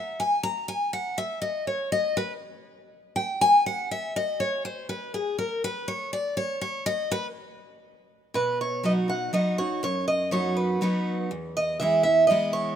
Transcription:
0.00 0.19 E5 medium
0.20 0.43 G#5 medium
0.43 0.68 A#5 loud
0.68 0.92 G#5 loud
0.93 1.17 F#5 medium
1.18 1.41 E5 loud
1.42 1.66 D#5 medium
1.67 1.91 C#5 medium
1.92 2.16 D#5 loud
2.17 2.32 B4 loud
3.16 3.40 G5 medium
3.41 3.65 G#5 loud
3.66 3.90 F#5 loud
3.91 4.15 E5 medium
4.16 4.39 D#5 loud
4.40 4.64 C#5 medium
4.65 4.88 C5 medium
4.89 5.13 B4 medium
5.14 5.38 G#4 medium
5.38 5.63 A#4 medium
5.64 5.87 B4 loud
5.88 6.12 C#5 medium
6.13 6.36 D5 medium
6.37 6.60 C#5 loud
6.61 6.85 C#5 loud
6.86 7.10 D#5 loud
7.12 7.26 B4 loud
8.34 9.28 B2 medium
8.34 8.58 B4 medium
8.61 8.83 C#5 loud
8.83 9.08 F#3 medium
8.83 9.08 B3 medium
8.83 9.08 D#4 medium
8.83 9.07 F#4 medium
8.83 8.92 D#5 medium
9.08 9.33 D#4 soft
9.08 9.32 F#4 medium
9.08 9.33 F#5 medium
9.33 9.57 F#3 medium
9.33 9.57 B3 medium
9.33 9.58 D#4 loud
9.33 9.57 F#4 loud
9.33 9.58 D#5 medium
9.58 9.83 D#4 soft
9.58 9.82 F#4 medium
9.58 9.81 C#5 loud
9.83 10.77 F#2 loud
9.83 10.07 C#5 loud
10.08 10.32 D#5 loud
10.31 10.79 F#3 medium
10.31 10.79 B3 medium
10.31 10.79 D#4 medium
10.31 10.80 F#4 loud
10.31 10.55 C#5 medium
10.57 10.81 B4 medium
10.81 11.28 F#3 medium
10.81 11.29 B3 medium
10.81 11.29 D#4 loud
10.81 11.29 F#4 loud
10.81 11.16 B4 medium
11.31 12.25 E2 medium
11.57 11.79 D#5 loud
11.80 12.05 E3 medium
11.80 12.05 G#3 medium
11.80 12.05 B3 medium
11.80 12.04 E4 loud
11.80 12.02 E5 loud
12.03 12.30 B3 soft
12.03 12.29 E4 medium
12.03 12.27 E5 loud
12.27 12.76 E3 loud
12.27 12.76 G#3 medium
12.27 12.76 B3 medium
12.27 12.53 D#5 loud
12.32 12.76 E4 loud
12.53 12.76 C#5 loud

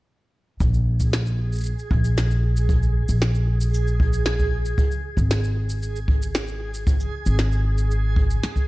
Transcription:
0.59 1.71 A#1 medium
0.59 8.68 G#4 medium
0.59 8.68 G#6 medium
0.59 kick loud
0.59 shaker soft
0.74 shaker soft
1.00 kick medium
1.00 shaker medium
1.13 snare medium
1.13 shaker soft
1.26 shaker soft
1.53 shaker soft
1.55 shaker soft
1.58 shaker soft
1.61 shaker soft
1.63 shaker medium
1.66 shaker soft
1.79 shaker soft
1.91 3.01 A#1 medium
1.91 kick loud
2.05 shaker medium
2.18 snare medium
2.18 shaker soft
2.31 shaker soft
2.57 shaker medium
2.69 kick loud
2.69 shaker soft
2.83 shaker soft
3.09 4.71 A#1 medium
3.09 shaker medium
3.22 snare medium
3.22 shaker medium
3.35 shaker soft
3.61 shaker medium
3.74 shaker medium
3.87 shaker soft
4.00 kick medium
4.13 shaker medium
4.26 snare medium
4.26 shaker soft
4.39 kick medium
4.39 shaker soft
4.66 shaker medium
4.78 kick loud
4.78 shaker soft
4.91 shaker soft
5.17 7.05 G#1 medium
5.17 kick medium
5.17 shaker medium
5.31 snare loud
5.31 shaker medium
5.44 shaker soft
5.70 shaker medium
5.83 shaker medium
5.96 shaker soft
6.08 kick loud
6.22 shaker medium
6.35 snare medium
6.35 shaker soft
6.48 shaker soft
6.74 shaker medium
6.87 kick loud
6.87 shaker soft
7.00 shaker soft
7.26 8.36 G#1 medium
7.26 shaker medium
7.39 snare medium
7.39 shaker medium
7.52 shaker soft
7.78 shaker medium
7.91 shaker medium
8.16 kick loud
8.31 shaker medium
8.43 snare medium
8.43 shaker medium
8.56 kick medium
8.56 shaker soft

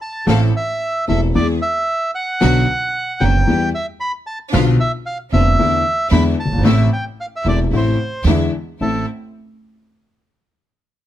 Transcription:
0.02 0.26 A5 medium
0.27 0.49 A1 loud
0.27 0.49 A1 medium
0.27 0.49 A2 medium
0.27 0.49 E3 medium
0.27 0.49 A3 medium
0.27 0.49 C4 medium
0.27 0.50 C4 medium
0.27 0.50 E4 medium
0.27 0.50 A4 medium
0.27 0.41 F5 medium
0.56 1.05 E5 loud
1.08 1.30 E1 medium
1.08 1.30 E2 medium
1.08 1.30 E3 medium
1.08 1.30 A3 soft
1.08 1.30 C4 soft
1.08 1.30 E4 soft
1.08 1.30 A4 soft
1.08 1.31 A4 medium
1.08 1.21 E5 loud
1.35 1.57 E2 medium
1.35 1.57 E3 medium
1.35 1.57 G#3 soft
1.35 1.57 B3 medium
1.35 1.57 B3 soft
1.35 1.57 E4 medium
1.35 1.57 G#4 medium
1.35 1.47 D5 loud
1.62 2.11 E5 loud
2.15 3.24 F#5 loud
2.41 2.63 B1 medium
2.41 2.64 B1 loud
2.41 2.63 B2 medium
2.41 2.63 D3 medium
2.41 2.63 F#3 medium
2.41 2.63 B3 medium
2.41 2.63 D4 medium
2.41 2.63 F#4 medium
2.41 2.64 F#4 loud
3.20 3.43 F#1 medium
3.20 3.43 F#2 medium
3.20 3.43 D3 medium
3.20 3.42 F#3 medium
3.20 3.43 B3 soft
3.20 3.43 D4 medium
3.20 3.43 F#4 medium
3.20 3.69 G5 loud
3.47 3.69 E2 medium
3.47 3.70 E2 medium
3.47 3.69 E3 medium
3.47 3.69 G3 soft
3.47 3.69 B3 soft
3.47 3.69 B3 medium
3.47 3.69 E4 soft
3.47 3.69 G4 medium
3.47 3.70 G4 medium
3.75 3.86 E5 medium
4.00 4.12 B5 loud
4.27 4.38 A5 medium
4.52 4.75 B1 medium
4.52 4.75 B1 loud
4.52 4.75 B2 loud
4.52 4.75 D3 medium
4.52 4.75 F3 medium
4.52 4.75 B3 medium
4.52 4.75 D4 medium
4.52 4.75 F4 medium
4.52 4.65 F5 medium
4.80 4.92 E5 medium
5.06 5.18 F5 medium
5.32 5.54 F1 medium
5.32 5.55 F1 medium
5.32 5.55 F2 medium
5.32 5.54 D3 medium
5.32 5.55 F3 medium
5.32 5.54 B3 medium
5.32 5.55 B3 soft
5.32 5.54 D4 soft
5.32 5.54 F4 medium
5.32 5.55 F4 medium
5.32 6.08 E5 loud
5.58 5.81 E2 medium
5.58 5.81 D3 medium
5.58 5.81 E3 medium
5.58 5.80 A3 medium
5.58 5.81 A3 medium
5.58 5.81 B3 medium
5.58 5.81 D4 medium
5.58 5.81 E4 medium
6.11 6.34 E2 loud
6.11 6.34 D3 medium
6.11 6.34 E3 medium
6.11 6.33 G#3 medium
6.11 6.34 G#3 medium
6.11 6.34 B3 medium
6.11 6.34 D4 medium
6.11 6.34 E4 loud
6.11 6.34 E4 medium
6.11 6.23 B5 loud
6.40 6.64 A5 loud
6.46 6.51 F#1 medium
6.46 6.52 F#1 medium
6.52 6.57 G1 medium
6.52 6.59 G1 medium
6.58 6.63 G#1 medium
6.58 6.65 G#1 medium
6.63 6.86 A1 loud
6.63 6.87 A1 loud
6.63 6.87 A2 medium
6.63 6.87 C3 medium
6.63 6.87 E3 medium
6.63 6.87 A3 medium
6.63 6.87 C4 medium
6.63 6.87 E4 loud
6.63 6.87 E4 medium
6.63 6.90 E5 medium
6.93 7.05 G5 medium
7.21 7.26 F5 medium
7.36 7.47 E5 medium
7.44 7.67 E1 medium
7.44 7.68 E1 medium
7.44 7.68 E2 medium
7.44 7.68 C3 soft
7.44 7.68 E3 soft
7.44 7.67 A3 soft
7.44 7.68 A3 soft
7.44 7.67 C4 soft
7.44 7.67 E4 medium
7.44 7.68 E4 medium
7.44 7.60 D5 medium
7.71 7.94 A1 medium
7.71 7.95 A1 medium
7.71 7.95 A2 medium
7.71 7.95 C3 soft
7.71 7.95 E3 soft
7.71 7.94 A3 soft
7.71 7.95 A3 soft
7.71 7.94 C4 medium
7.71 7.94 E4 medium
7.71 7.95 E4 medium
7.77 8.25 C5 medium
8.24 8.48 E2 loud
8.24 8.50 E2 medium
8.24 8.49 D3 medium
8.24 8.50 E3 medium
8.24 8.49 G#3 medium
8.24 8.50 B3 medium
8.24 8.49 D4 medium
8.24 8.49 E4 medium
8.24 8.50 E4 medium
8.81 9.03 A1 medium
8.81 9.03 A3 medium
8.81 9.03 A3 soft
8.81 9.03 C4 medium
8.81 9.03 C4 soft
8.81 9.03 E4 medium
8.81 9.06 A4 medium

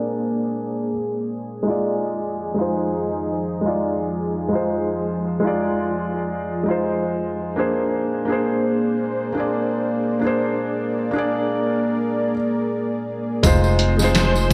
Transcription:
0.00 0.88 A#3 medium
0.00 1.97 A#3 medium
0.00 0.90 D4 medium
0.00 0.91 G#4 medium
0.00 7.68 G#4 medium
0.00 1.97 C5 medium
0.00 0.92 D5 medium
0.00 1.96 D5 medium
1.63 2.50 G#3 medium
1.63 2.52 D#4 medium
1.68 2.53 F4 medium
1.68 2.54 D5 medium
2.01 7.68 F3 medium
2.01 4.84 D#4 medium
2.54 3.58 G#3 medium
2.54 3.59 D#4 medium
2.59 3.60 F4 medium
2.59 3.61 C5 medium
3.61 4.46 G#3 medium
3.61 4.47 D#4 medium
3.66 4.48 F4 medium
3.66 4.49 D5 medium
4.48 5.36 G#3 medium
4.48 5.37 D#4 medium
4.53 5.38 F4 medium
4.53 5.40 C5 medium
4.88 7.70 F4 medium
5.40 6.60 G#3 medium
5.40 6.62 D#4 medium
5.45 6.63 F4 medium
5.45 6.64 D5 medium
6.63 7.51 G#3 medium
6.63 7.52 D#4 medium
6.68 7.53 F4 medium
6.68 7.54 C5 medium
7.56 8.23 A#3 medium
7.56 8.24 D4 medium
7.56 8.24 G#4 medium
7.56 8.25 C5 medium
7.73 13.40 A#3 medium
7.73 13.40 G#4 medium
7.73 10.56 C5 medium
7.73 13.40 D5 medium
8.25 9.29 A#3 medium
8.25 9.30 D4 medium
8.30 9.31 G#4 medium
8.30 9.32 C5 medium
9.32 10.17 A#3 medium
9.32 10.18 D4 medium
9.37 10.20 G#4 medium
9.37 10.21 D5 medium
10.19 11.07 A#3 medium
10.19 11.08 D4 medium
10.24 11.10 G#4 medium
10.24 11.11 C5 medium
10.58 13.41 A#4 medium
11.11 12.32 A#3 medium
11.11 12.33 D4 medium
11.16 12.34 G#4 medium
11.16 12.35 D5 medium
13.43 14.53 F1 loud
13.43 13.91 G#3 loud
13.43 14.53 C4 medium
13.43 13.92 D#4 medium
13.43 14.53 F4 medium
13.43 13.92 F4 loud
13.43 14.53 G#4 medium
13.43 14.53 C5 medium
13.43 13.93 C5 loud
13.43 kick loud
13.43 closed hi-hat medium
13.43 tambourine medium
13.64 tambourine soft
13.79 closed hi-hat medium
13.97 14.53 G#3 medium
13.97 14.53 D#4 medium
13.97 snare soft
13.97 tambourine medium
14.02 14.53 F4 medium
14.02 14.53 C5 loud
14.15 snare loud
14.15 closed hi-hat medium
14.15 tambourine medium
14.36 tambourine soft

